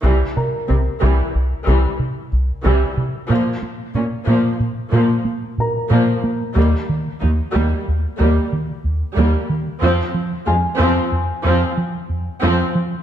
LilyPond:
<<
  \new Staff \with { instrumentName = "Grand piano" } { \time 5/4 \key c \phrygian \tempo 4 = 92 r8 <bes' bes''>2. r8 e'''4~ | e'''2 r4. <bes' bes''>4.~ | <bes' bes''>4. r2. r8 | r4 aes''2. r4 | }
  \new Staff \with { instrumentName = "Viola section" } { \clef bass \time 5/4 \key c \phrygian <e g>8 r8 <g c'>8 <e g>8 r8 <e g>8 r4 <e g>8 r8 | <f bes>8 r8 <bes des'>8 <f bes>8 r8 <f bes>8 r4 <f bes>8 r8 | <g bes>8 r8 <bes ees'>8 <g bes>8 r8 <g bes>8 r4 <g bes>8 r8 | <f c'>8 r8 <aes f'>8 <f c'>8 r8 <f c'>8 r4 <f c'>8 r8 | }
  \new Staff \with { instrumentName = "Cello section" } { \clef bass \time 5/4 \key c \phrygian c8 r8 c8 c8 r8 c8 r4 c8 r8 | bes,8 r8 bes,8 bes,8 r8 bes,8 r4 bes,8 r8 | ees,8 r8 ees,8 ees,8 r8 ees,8 r4 ees,8 r8 | f,8 r8 f,8 f,8 r8 f,8 r4 f,8 r8 | }
  \new Staff \with { instrumentName = "Analog synth bass" } { \clef bass \time 5/4 \key c \phrygian c,8 c8 c,8 c,8 c,8 c,8 c8 c,8 c,8 c8 | bes,8 bes8 bes,8 bes,8 bes,8 bes,8 bes8 bes,8 bes,8 bes8 | ees,8 ees8 ees,8 ees,8 ees,8 ees,8 ees8 ees,8 ees,8 ees8 | f,8 f8 f,8 f,8 f,8 f,8 f8 f,8 f,8 f8 | }
>>